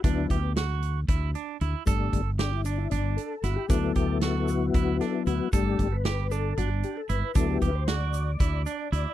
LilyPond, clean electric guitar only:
\new Staff \with { instrumentName = "Clean electric guitar" } { \time 7/8 \key g \major \tempo 4 = 115 d'8 g'8 fis'4 e'8 d'8 e'8 | a'4 g'8 d'8 d'4 e'8 | d'8 g'8 fis'4 e'8 d'8 e'8 | a'4 g'8 d'8 d'4 e'8 |
d'8 g'8 fis'4 e'8 d'8 e'8 | }